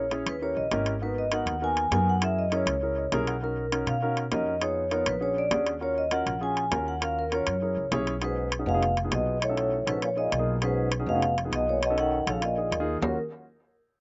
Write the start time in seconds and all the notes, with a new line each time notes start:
Already playing: A#1 C#5
0.11 C#4 E4 G#4 C#5, high timbale, low timbale
0.26 D#2 B4, high timbale
0.42 C#4 E4 G4 A#4 C#5
0.56 A#1 D#5
0.71 G#1 C#4 E4 G4 A#4, high timbale, low timbale
0.86 high timbale
1.02 B3 D#4 F#4 A#4 B4
1.18 D#5
1.32 B3 D#4 F#4 A#4 F#5, high timbale, low timbale
1.46 D#2, high timbale
1.62 B3 D#4 F#4 A#4 G#5
1.77 high timbale
1.91 F#2 B3 D#4 F#4 A#4 G#5, high timbale, low timbale
2.09 F#5
2.22 C#4 E4 G#4 A#4 E5, high timbale
2.39 D#5
2.52 C#4 E4 G#4 A#4 C#5, high timbale, low timbale
2.66 C#2, high timbale
2.83 C#4 E4 G#4 A#4
2.98 D#5
3.12 B1 C#4 E4 G#4 A#4 E5, high timbale, low timbale
3.27 F#5, high timbale
3.43 C#4 D#4 F#4 A#4
3.72 C#4 D#4 F#4 A#4, high timbale, low timbale
3.86 B2 F5, high timbale
4.02 C#4 D#4 F#4 A#4
4.17 high timbale
4.32 F2 C#4 D#4 F#4 A#4 D#5, high timbale, low timbale
4.61 B3 D#4 F4 G#4 C#5, high timbale
4.91 B3 D#4 F4 A#4 C#5, high timbale, low timbale
5.06 A#1 B4, high timbale
5.21 C#4 D4 F#4 G#4 C#5
5.38 D5
5.51 D#2 C#4 D4 F#4 G#4, high timbale, low timbale
5.67 high timbale
5.81 C#4 F4 F#4 A#4 C#5
5.98 D#5
6.11 C#4 F4 F#4 A#4 F#5, high timbale, low timbale
6.26 A#1, high timbale
6.41 C#4 F4 F#4 G#4 G#5
6.57 high timbale
6.71 D#2 C#4 F4 F#4 A#4, high timbale, low timbale
6.88 F#5
7.01 C#4 F4 F#4 A#4 F5, high timbale
7.19 A#4
7.32 C#4 F4 F#4 A#4 C#5, high timbale, low timbale
7.47 F#2, high timbale
7.62 C#4 E4 G#4 A#4
7.77 C#2
7.91 B1 C#4 E4 G#4 C#5, high timbale, low timbale
8.07 high timbale
8.22 G#2 C#4 D#4 F#4 G#4 B4, high timbale
8.52 high timbale
8.59 C#4 D#4 F#4 G#4
8.66 F1 B2 F5
8.74 C#4 D#4 F#4 G#4
8.83 high timbale
8.97 high timbale
9.04 B3 D#4 F4 G#4
9.11 B1 B2 D#5, high timbale, low timbale
9.42 A2 C#5, high timbale
9.49 C#4 D#4 F#4 A4
9.57 high timbale
9.86 A#1 G#2 C#4 D#4 F#4 A4 B4, high timbale
10.02 A#2 C#5, high timbale
10.16 A#2 A#3 D#4 F4 G#4 D#5
10.32 B1, high timbale
10.39 A#3 D#4 F4 G#4
10.62 G#2 C#4 D#4 F#4 G#4 B4, high timbale
10.92 high timbale
10.99 C#4 D#4 F#4 G#4
11.06 F1 B2 F5
11.15 C#4 D#4 F#4 G#4
11.22 high timbale
11.38 high timbale
11.45 B3 D#4 F4 G#4
11.52 B1 B2 D#5, high timbale
11.68 A#2 C#5
11.83 B2 D#5, high timbale
11.90 C#4 D#4 F#4 A4
11.98 D#3 F#5, high timbale
12.27 A#1 C#3 C#4 D#4 F#4 A4 F5, high timbale
12.42 A#2 D#5, high timbale
12.57 A#3 D#4 F4 G#4
12.72 D#2, high timbale
12.80 A#3 D#4 F4 G#4
13.02 D#2 F#3 A#3 C#4 F4 F#4 A#4, low timbale